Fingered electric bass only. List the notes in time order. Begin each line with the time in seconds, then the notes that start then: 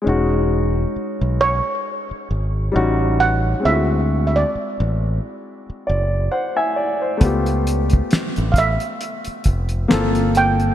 0.07 E1
0.96 muted fingered electric bass stroke
1.21 B1
2.11 muted fingered electric bass stroke
2.31 G#1
2.76 A1
3.65 D2
4.55 muted fingered electric bass stroke
4.80 A1
5.70 muted fingered electric bass stroke
5.89 F#1
7.22 C#2
8.13 muted fingered electric bass stroke
8.38 A1
9.27 muted fingered electric bass stroke
9.47 F1
9.93 G1